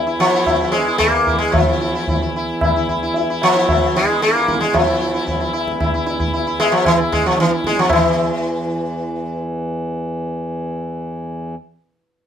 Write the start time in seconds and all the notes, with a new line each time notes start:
Already playing: E2 E3
0.07 E4
0.19 F3, tabla na
0.34 E4
0.47 E4, tabla na, tabla ge
0.61 E4
0.72 G#3, tabla te
0.87 E4
0.98 A#3, tabla na, tabla ge
1.27 E4, tabla ge
1.38 G#3
1.52 E2 E3 F3, tabla tin, tabla ge
1.68 E4
1.80 E4
1.95 E4
2.08 E4, tabla tin, tabla ge
2.22 E4
2.36 E4
2.61 E4, tabla na, tabla ge
2.76 E4
2.88 E4, tabla ge
3.03 E4
3.14 E4, tabla tin
3.30 E4
3.42 F3, tabla na
3.56 E4
3.69 E4, tabla na, tabla ge
3.96 G#3, tabla te
4.09 E4
4.21 A#3, tabla te
4.35 E4, tabla te
4.47 E4, tabla ke
4.61 G#3, tabla te
4.74 F3, tabla tin, tabla ge
4.86 E4
5.00 E4
5.14 E4
5.27 E4, tabla tin, tabla ge
5.40 E4
5.53 E4, tabla na
5.68 tabla ke
5.80 E4, tabla na, tabla ge
5.94 E4
6.06 E4, tabla te
6.20 E4, tabla ge
6.33 E4, tabla tin
6.47 E4
6.60 G#3, tabla na
6.72 F3
6.86 E3, tabla na, tabla ge
7.00 E4
7.12 G#3, tabla ge
7.26 F3
7.36 E3 F3, tabla te
7.52 E4, tabla te
7.64 G#3, tabla ke
7.77 F3, tabla te
7.90 E2 E3, tabla na, tabla ge